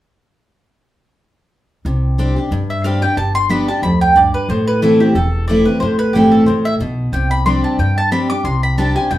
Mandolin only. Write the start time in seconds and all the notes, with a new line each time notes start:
2.70 E5
2.84 F5
3.02 G5
3.17 A5
3.35 C6
3.50 B5
3.68 A5
3.83 B5
4.01 G5
4.17 D5
4.34 B4
4.50 C5
4.67 B4
4.83 A4
5.00 G4
5.15 A4
5.48 D5
5.65 B4
5.80 C5
5.99 B4
6.13 G4
6.32 A4
6.46 C5
6.65 E5
7.13 G5
7.31 B5
7.46 C6
7.64 A5
7.79 G5
7.98 A5
8.12 B5
8.30 D6
8.45 C6
8.63 B5
8.78 A5
8.96 G#5
9.11 G5